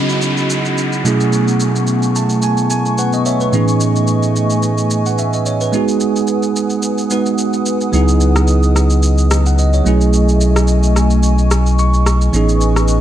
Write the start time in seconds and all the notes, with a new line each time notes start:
Already playing: C#3 F#3 B3 C#4 D#4 E4 F#4 G#4 D#5 F#5 B5, downlifter
0.09 shaker
0.22 shaker
0.37 shaker
0.50 shaker
0.65 shaker
0.78 shaker
0.93 shaker
1.04 B2 F#3 A3 B3 C#4 E4 G#4 G#5 C#6, shaker
1.20 shaker
1.33 shaker
1.48 shaker
1.60 shaker
1.76 shaker
1.87 shaker
2.03 shaker
2.16 A5, shaker
2.29 shaker
2.42 G#5, shaker
2.57 shaker
2.70 G#5, shaker
2.86 shaker
2.98 B4 F#5, shaker
3.13 D#5, shaker
3.26 C#5 E5, shaker
3.41 B4, shaker
3.52 A2 E3 A3 B3 C#4 D#4 G#4 B4 D#5, shaker
3.68 shaker
3.80 shaker
3.96 shaker
4.07 shaker
4.23 shaker
4.36 shaker
4.50 shaker
4.63 shaker
4.78 shaker
4.90 shaker
5.06 F#5, shaker
5.18 E5, shaker
5.33 D#5, shaker
5.46 C#5, shaker
5.61 B4, shaker
5.72 G#3 B3 D#4 F#4 G#4 F#5 D#6, shaker
5.88 shaker
6.00 shaker
6.16 shaker
6.27 shaker
6.43 shaker
6.56 shaker
6.70 shaker
6.82 shaker
6.98 shaker
7.10 G#3 B3 D#4 F#4 B4, shaker
7.26 shaker
7.38 shaker
7.53 shaker
7.66 shaker
7.81 shaker
7.92 C#2 F#3 B3 D#4 E4 G#4 D#5, shaker
8.08 shaker
8.21 shaker
8.36 cross-stick, shaker
8.47 shaker
8.63 shaker
8.76 cross-stick, shaker
8.90 shaker
9.03 shaker
9.18 shaker
9.31 cross-stick, shaker
9.46 F#5, shaker
9.58 D#5, shaker
9.73 C#5, shaker
9.84 B1 F#3 A3 C#4 E4 G#4 G#5 C#6, shaker
10.01 shaker
10.13 shaker
10.29 shaker
10.41 shaker
10.56 cross-stick, shaker
10.68 shaker
10.83 shaker
10.96 cross-stick, shaker
11.10 shaker
11.23 shaker
11.38 shaker
11.51 cross-stick, shaker
11.66 shaker
11.79 C#6, shaker
11.94 shaker
12.06 cross-stick, shaker
12.21 shaker
12.32 A1 E3 B3 C#4 D#4 G#4 B4 D#5 G#5, shaker
12.49 shaker
12.61 shaker
12.76 cross-stick, shaker
12.88 shaker